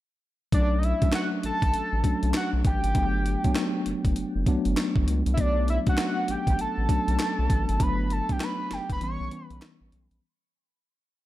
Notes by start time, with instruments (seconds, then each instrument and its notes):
0.52 analog synth bass B1, tine electric piano F#3 A3 C#4 D4, analog synth lead D5, kick, closed hi-hat
0.78 analog synth lead D#5
0.83 analog synth lead E5, closed hi-hat
1.02 tine electric piano F#3 A3 C#4 D4, kick, closed hi-hat
1.13 analog synth lead F#5, snare, clap, closed hi-hat
1.43 analog synth bass A1, analog synth lead A5, closed hi-hat
1.62 analog synth bass A1, kick, closed hi-hat
1.74 analog synth bass A1, closed hi-hat
1.93 analog synth bass A1
2.03 tine electric piano F#3 A3 C#4 D4, kick, closed hi-hat
2.23 analog synth bass B1, closed hi-hat
2.34 analog synth lead F#5, snare, clap, closed hi-hat
2.53 analog synth bass B1
2.65 analog synth bass A1, analog synth lead G5, kick, closed hi-hat
2.84 analog synth bass G#1, closed hi-hat
2.95 analog synth bass G1, tine electric piano F#3 A3 B3 D4, kick, closed hi-hat
3.26 closed hi-hat
3.44 tine electric piano F#3 A3 B3 D4, kick, closed hi-hat
3.56 snare, clap, closed hi-hat
3.86 analog synth bass F#1, closed hi-hat
4.05 analog synth bass F#1, kick, closed hi-hat
4.16 analog synth bass F#1, closed hi-hat
4.36 analog synth bass F#1
4.46 tine electric piano F#3 A3 B3 D4, kick, closed hi-hat
4.65 analog synth bass G1, closed hi-hat
4.77 snare, clap, closed hi-hat
4.96 analog synth bass G1, kick
5.07 analog synth bass C#2, closed hi-hat
5.26 analog synth bass C2, closed hi-hat
5.34 analog synth bass B1, analog synth lead E5, kick, closed hi-hat
5.38 tine electric piano F#3 A3 B3 D4, analog synth lead D5
5.68 analog synth lead E5, closed hi-hat
5.87 tine electric piano F#3 A3 C#4 D4, analog synth lead F#5, kick, closed hi-hat
5.98 snare, clap, closed hi-hat
6.28 analog synth bass A1, analog synth lead G5, closed hi-hat
6.47 analog synth bass A1, kick, closed hi-hat
6.59 analog synth bass A1, analog synth lead A5, closed hi-hat
6.78 analog synth bass A1
6.89 tine electric piano F#3 A3 C#4 D4, kick, closed hi-hat
7.08 analog synth bass B1, closed hi-hat
7.19 snare, clap, closed hi-hat
7.39 analog synth bass B1
7.50 analog synth bass A1, kick, closed hi-hat
7.69 analog synth bass G#1, closed hi-hat
7.80 analog synth bass G1, tine electric piano F#3 A3 B3 D4, analog synth lead B5, kick, closed hi-hat
8.10 analog synth lead A5, closed hi-hat
8.29 tine electric piano F#3 A3 B3 D4, analog synth lead G5, kick, closed hi-hat
8.40 analog synth lead B5, snare, clap, closed hi-hat
8.71 analog synth bass F#1, analog synth lead G5, snare, closed hi-hat
8.90 analog synth bass F#1, analog synth lead B5, kick, closed hi-hat
9.00 analog synth bass A1, tine electric piano E3 G3 B3 C#4, analog synth lead C#6, closed hi-hat
9.20 analog synth bass B1
9.31 tine electric piano E3 G3 B3 C#4, closed hi-hat
9.47 analog synth bass B1, analog synth lead B5, closed hi-hat
9.62 snare, clap, closed hi-hat
9.81 analog synth bass A1
9.92 analog synth bass B1, closed hi-hat
10.11 analog synth bass A#1, closed hi-hat